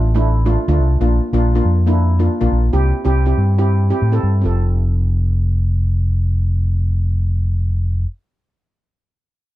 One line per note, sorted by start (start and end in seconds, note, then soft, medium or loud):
0.00 0.55 A1 medium
0.15 0.34 A3 medium
0.15 0.34 D4 medium
0.15 0.34 E4 medium
0.46 0.59 A3 medium
0.46 0.59 D4 medium
0.46 0.59 F4 medium
0.68 0.77 D2 medium
0.68 0.88 A3 medium
0.68 0.88 D4 medium
0.68 0.88 F4 medium
0.79 0.97 C2 medium
1.00 1.18 A#1 medium
1.00 1.20 A#3 medium
1.00 1.20 D4 medium
1.00 1.20 F4 medium
1.33 1.59 A#1 medium
1.33 1.46 A#3 medium
1.33 1.46 D4 medium
1.33 1.46 F4 medium
1.55 1.74 A#3 medium
1.55 1.74 D4 medium
1.55 1.74 F4 medium
1.65 2.27 F2 medium
1.87 2.06 A#3 medium
1.87 2.06 D4 medium
1.87 2.06 E4 medium
2.19 2.32 A#3 medium
2.19 2.32 D4 medium
2.19 2.32 F4 medium
2.41 2.50 A#1 medium
2.41 2.60 A#3 medium
2.41 2.60 D4 medium
2.41 2.60 F4 medium
2.51 2.69 A#1 medium
2.73 2.91 C2 medium
2.73 2.92 C4 medium
2.73 2.92 E4 medium
2.73 2.92 G4 medium
3.05 3.32 C2 medium
3.05 3.18 C4 medium
3.05 3.18 E4 medium
3.05 3.18 G4 medium
3.26 3.45 C4 medium
3.26 3.46 E4 medium
3.26 3.46 G4 medium
3.38 3.91 G2 medium
3.58 3.78 C4 medium
3.58 3.78 E4 medium
3.58 3.78 G4 medium
3.90 4.04 C4 medium
3.90 4.04 E4 medium
3.90 4.04 G4 medium
4.02 4.21 A2 medium
4.12 4.32 C4 medium
4.12 4.32 E4 medium
4.12 4.32 A4 medium
4.23 4.43 G2 medium
4.41 8.04 F1 medium
4.41 8.01 C4 medium
4.41 8.04 F4 medium
4.41 8.05 A4 medium